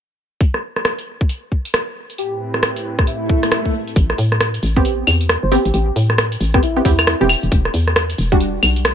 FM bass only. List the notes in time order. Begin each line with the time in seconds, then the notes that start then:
3.96 A1
4.18 A2
4.63 A1
5.07 E2
5.43 G1
5.65 A1
5.74 A1
5.96 A2
6.41 A1
6.85 E2
7.21 E1
7.43 E1
7.52 E1
7.74 E2
8.18 E1
8.63 B1